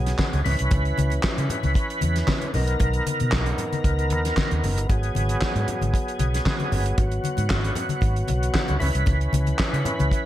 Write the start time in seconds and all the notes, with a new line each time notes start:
Already playing: B1 F#3 B3 G#4
0.06 snare, closed hi-hat
0.19 kick, snare, clap, high conga
0.33 C#2, closed hi-hat, high conga
0.45 C#2 E3 C#4 B4, open hi-hat, muted conga, low conga
0.59 C2, closed hi-hat
0.71 C#2, kick, closed hi-hat, muted conga, low conga
0.85 closed hi-hat
0.98 C#2, closed hi-hat, muted conga, high conga
1.10 closed hi-hat, high conga
1.23 kick, snare, clap, muted conga
1.38 C#3, closed hi-hat
1.50 closed hi-hat, muted conga, low conga
1.63 C#2, closed hi-hat, high conga
1.74 kick, closed hi-hat, muted conga
1.90 closed hi-hat
2.01 E2, closed hi-hat, muted conga, high conga
2.16 snare, closed hi-hat
2.27 kick, snare, clap, muted conga, high conga
2.41 closed hi-hat, high conga
2.54 B1 D#3 B3 A#4, open hi-hat, muted conga, low conga
2.67 closed hi-hat
2.80 B1, kick, closed hi-hat, low conga
2.93 closed hi-hat
3.07 closed hi-hat, muted conga, high conga
3.20 B2, closed hi-hat, high conga
3.32 B1, kick, snare, clap
3.46 closed hi-hat
3.58 closed hi-hat, low conga
3.72 closed hi-hat, high conga
3.84 C#2, kick, closed hi-hat
3.99 closed hi-hat
4.10 D#2, closed hi-hat, high conga
4.25 snare, closed hi-hat
4.37 kick, snare, clap, high conga
4.51 D#2, closed hi-hat, high conga
4.64 F#1, open hi-hat, muted conga, low conga
4.78 G1, closed hi-hat
4.89 G#1 F#3 G#4, kick, closed hi-hat, muted conga, low conga
5.03 closed hi-hat
5.15 G#1, closed hi-hat, muted conga, high conga
5.29 closed hi-hat, high conga
5.41 muted fingered electric bass stroke, kick, snare, clap, muted conga
5.55 G#2, closed hi-hat
5.68 closed hi-hat, low conga
5.81 G#1, closed hi-hat, high conga
5.94 kick, closed hi-hat
6.08 closed hi-hat
6.19 B1, closed hi-hat, muted conga, high conga
6.34 snare, closed hi-hat
6.46 kick, snare, clap, high conga
6.60 closed hi-hat, high conga
6.72 G1, open hi-hat, muted conga, low conga
6.86 closed hi-hat
6.98 G#1 F#4, kick, closed hi-hat, low conga
7.11 closed hi-hat
7.24 closed hi-hat, muted conga, high conga
7.37 G#2, closed hi-hat, high conga
7.50 G#1, kick, snare, clap
7.64 closed hi-hat
7.75 closed hi-hat, muted conga, low conga
7.89 closed hi-hat, high conga
8.01 G#1, kick, closed hi-hat, muted conga
8.16 closed hi-hat
8.28 B1, closed hi-hat, high conga
8.43 closed hi-hat
8.54 kick, snare, clap, muted conga, high conga
8.68 C#2, closed hi-hat, high conga
8.79 C#2 E3 C#4 B4, open hi-hat, low conga
8.95 C2, closed hi-hat
9.06 C#2, kick, closed hi-hat, muted conga, low conga
9.21 closed hi-hat
9.33 C#2, closed hi-hat, muted conga, high conga
9.46 closed hi-hat, high conga
9.59 muted fingered electric bass stroke, kick, snare, clap
9.73 C#3, closed hi-hat
9.85 closed hi-hat, low conga
9.99 C#2, closed hi-hat, high conga
10.11 kick, closed hi-hat